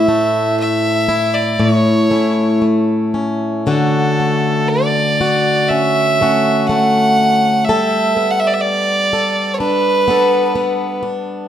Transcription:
Already playing: A2 E4 E5
0.08 A3
0.60 E5
1.09 E4
1.34 D5
1.59 A2 D5
1.70 C#5
2.11 A3 C#4 E4
2.62 A3
3.14 C#4
3.67 D3 F#4 A4
4.20 A3
4.69 D5
5.21 F#4
5.68 C#4 E5
6.21 A3 C#4 F#4
6.67 A3 F#5
7.19 C#4
7.65 E5
7.69 G3 A4
8.17 B3
8.31 F#5
8.40 E5
8.47 D5
8.54 E5
8.61 D5
9.13 A4
9.54 B4 C#5
9.60 D4
10.08 B3 D4 A4
10.55 B3
11.03 D4

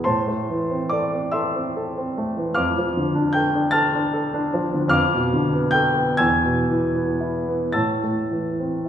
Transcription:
0.04 A2 C5 A5 C6
0.27 A3
0.50 E3
0.71 C4
0.90 A4 D5 D6
1.13 C4
1.32 A4 E5 C6 E6
1.56 C4
1.77 A4
1.98 C4
2.18 A3
2.37 E3
2.54 F2 F5 D6 F6
2.78 F3
2.97 D3
3.15 D4
3.33 A4 G5 G6
3.55 D4
3.71 A4 A5 F6 A6
3.95 D4
4.14 A4
4.34 D4
4.54 F3
4.74 D3
4.88 F2 F5 D6 F6
5.14 B2
5.33 D3
5.53 B3
5.71 A4 G5 G6
5.96 B3
6.17 E2 G#5 E6 G#6
6.44 B2
6.70 E3
6.95 B3
7.21 E4
7.48 B3
7.72 A2 A5 E6 A6
8.03 A3
8.31 E3
8.60 C4
8.85 E4

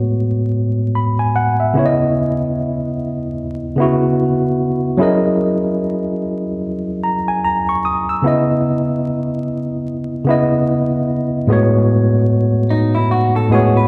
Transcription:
Already playing: A2 G#3 B3 F#4 C#5
0.95 B5
1.19 G#5
1.36 F#5
1.60 E5
1.74 C#3 B3 E4
1.79 C#5
1.86 D#5
3.76 C#3 B3 E4
3.81 F#4
4.97 F#3 C#4 E4 G#4
5.02 A#4 D#5
7.04 A#5
7.28 G#5
7.44 A#5
7.69 C#6
7.85 D#6
8.09 E6
8.22 C#3 B3 E4
8.27 D#5
10.25 C#3 B3 E4
10.30 D#5
11.47 A2 G#3 B3 F#4
11.52 C#5
12.70 D#4
12.95 E4
13.11 F#4
13.36 A4
13.50 A2 G#3 B3 F#4 G#4
13.55 C#5
13.77 B4

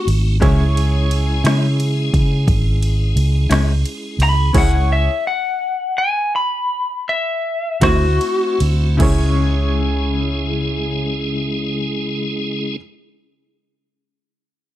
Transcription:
Already playing: A3 C4 D#4 F#4 C5
0.07 G#1, ride
0.40 C#2 C#3 G#3 C#4 E4 G#4 C#5, kick, ride
0.77 ride
1.11 ride
1.44 C#3 G#3 C#4 E4, snare, ride
1.80 ride
2.14 C#3, kick, ride
2.47 G#1, kick, ride
2.83 ride
3.16 C#2, ride
3.50 C#2 C#3 G#3 C#4 E4, snare, ride
3.85 ride
4.19 C#2, snare, ride
4.23 B5
4.53 C#2 C#3 G#3 C#4 E4 G#4 C#5, kick, crash, ride
4.58 F#5
4.93 E5
5.27 F#5
5.98 G#5
6.36 B5
7.09 E5
7.81 D2 D3 A3 C4 E4 F#4 C5, kick, snare, ride
8.21 ride
8.60 D2, ride
8.97 C#2 C#3 G#3 C#4 E4 G#4, kick, crash
9.02 C#4 E4 C#5

